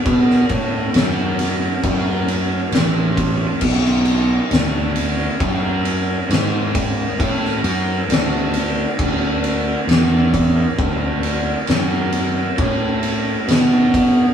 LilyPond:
<<
  \new Staff \with { instrumentName = "Fingered electric bass" } { \clef bass \time 4/4 \key b \dorian \tempo 4 = 67 b,8 a,8 fis,4 fis,4 a,,4 | b,,4 d,4 fis,4 gis,4 | a,8 fis,8 d,4 d,4 e,4 | d,4 fis,4 a,4 b,4 | }
  \new DrumStaff \with { instrumentName = "Drums" } \drummode { \time 4/4 <bd cymr>16 sn16 <bd cymr>8 <cymr sn>8 <cymr sn>8 <bd cymr>8 cymr8 <cymr sn>8 <bd cymr>8 | <cymc bd>16 sn16 cymr8 <cymr sn>8 cymr8 <bd cymr>8 cymr8 <cymr sn>8 <bd cymr>8 | <bd cymr>16 sn16 cymr8 <cymr sn>8 cymr8 <bd cymr>8 cymr8 <cymr sn>8 <bd cymr>8 | <bd cymr>8 cymr8 <cymr sn>8 cymr8 <bd cymr>8 cymr8 <cymr sn>8 <bd cymr>8 | }
>>